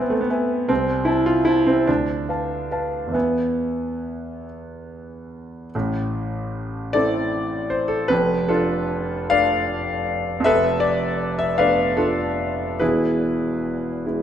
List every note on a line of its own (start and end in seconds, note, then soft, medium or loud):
0.00 0.21 B3 medium
0.00 0.69 C4 medium
0.00 0.30 B4 soft
0.00 0.30 E5 soft
0.00 0.31 G#5 soft
0.10 0.20 A3 medium
0.21 0.30 B3 medium
0.30 0.65 B4 soft
0.30 0.65 E5 soft
0.30 0.66 G#5 medium
0.69 1.07 C2 medium
0.69 1.08 C4 medium
1.05 1.26 E4 medium
1.05 1.43 C5 soft
1.05 1.43 E5 soft
1.05 1.43 A5 soft
1.26 1.47 F4 medium
1.45 1.66 E4 medium
1.45 1.83 C5 soft
1.45 1.84 E5 soft
1.45 1.84 A5 soft
1.67 1.87 C4 medium
1.87 2.28 D2 soft
1.87 3.14 D4 medium
2.29 2.67 B4 soft
2.29 2.67 F5 soft
2.29 2.68 A5 soft
2.71 3.10 B4 soft
2.71 3.10 F5 soft
2.71 3.11 A5 soft
3.07 5.66 E2 soft
3.11 4.44 B3 medium
3.11 5.68 B4 soft
3.11 5.69 E5 soft
3.11 5.70 G#5 soft
5.75 8.08 A1 medium
5.75 8.07 A2 medium
6.93 8.07 A3 soft
6.93 8.07 C4 soft
6.93 8.07 E4 medium
6.93 7.67 A4 medium
6.93 7.71 D5 loud
7.70 7.90 C5 medium
7.88 8.09 A4 medium
8.08 10.40 F1 medium
8.08 10.39 F2 medium
8.08 8.50 B4 loud
8.48 9.28 D4 medium
8.48 9.28 F4 medium
8.48 9.30 A4 medium
9.30 10.40 A3 medium
9.30 10.40 D4 medium
9.30 10.40 A4 medium
9.30 10.40 D5 medium
9.30 10.44 F5 loud
10.40 12.74 F2 medium
10.44 12.77 F1 medium
10.44 10.80 A4 loud
10.44 10.80 B4 medium
10.44 10.82 E5 loud
10.80 11.38 D5 medium
11.39 11.58 E5 medium
11.58 12.77 A3 soft
11.58 12.77 B3 soft
11.58 11.96 D4 medium
11.58 11.96 B4 medium
11.58 11.96 D5 medium
11.58 11.98 F5 medium
11.97 12.76 D4 medium
11.97 12.77 F4 medium
11.97 12.80 A4 medium
12.80 14.22 E1 medium
12.80 14.22 E2 medium
12.80 14.05 E4 medium
12.80 14.22 G#4 medium
12.80 14.22 B4 medium
14.06 14.22 G#3 soft
14.06 14.22 B3 soft
14.06 14.22 E4 soft